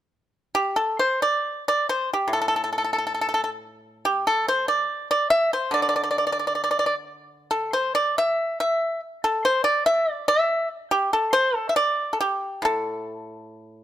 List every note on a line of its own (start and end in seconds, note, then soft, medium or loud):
0.55 0.75 G4 medium
0.76 0.97 A4 medium
0.99 1.20 C5 medium
1.22 1.63 D5 medium
1.68 1.88 D5 medium
1.89 2.09 C5 medium
2.13 2.31 G4 medium
2.28 4.87 A2 soft
2.33 2.39 A4 medium
2.42 2.47 A4 soft
2.48 2.54 A4 soft
2.64 2.69 A4 soft
2.73 2.77 A4 soft
2.78 2.83 A4 soft
2.84 2.90 A4 soft
2.93 2.97 A4 soft
2.98 3.04 A4 soft
3.07 3.12 A4 soft
3.14 3.19 A4 soft
3.21 3.27 A4 soft
3.29 3.33 A4 soft
3.34 3.40 A4 medium
3.44 3.49 A4 soft
4.05 4.24 G4 medium
4.27 4.46 A4 medium
4.48 4.67 C5 medium
4.68 5.07 D5 medium
5.11 5.30 D5 medium
5.30 5.51 E5 medium
5.53 5.73 C5 medium
5.71 8.37 D3 soft
5.71 5.81 D5 medium
5.82 5.88 D5 soft
5.89 5.95 D5 soft
5.96 6.02 D5 soft
6.03 6.09 D5 soft
6.11 6.17 D5 soft
6.18 6.25 D5 soft
6.27 6.31 D5 soft
6.32 6.38 D5 soft
6.39 6.46 D5 soft
6.47 6.54 D5 soft
6.55 6.62 D5 soft
6.64 6.70 D5 soft
6.71 6.78 D5 soft
6.79 6.85 D5 soft
6.86 6.94 D5 soft
7.51 7.71 A4 medium
7.73 7.94 C5 medium
7.95 8.15 D5 medium
8.18 8.58 E5 medium
8.60 8.99 E5 medium
9.24 9.43 A4 medium
9.45 9.64 C5 medium
9.64 9.84 D5 medium
9.86 10.11 E5 medium
10.11 10.25 D5 medium
10.28 10.67 E5 medium
10.91 11.11 G4 medium
11.13 11.33 A4 medium
11.33 11.56 C5 medium
11.56 11.67 A4 medium
11.69 11.76 E5 medium
11.76 12.11 D5 medium
12.13 12.20 A4 soft
12.21 12.61 G4 medium
12.62 13.84 A2 soft
12.62 13.84 A4 medium